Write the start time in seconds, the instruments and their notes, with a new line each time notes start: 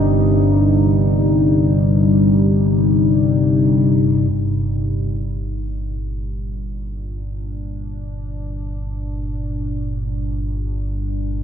Already playing: synth drone G1 G2, analog synth pad G2 C3 G3 D#4
4.31 synth drone G1 G2, analog synth pad A#2
5.76 analog synth pad D4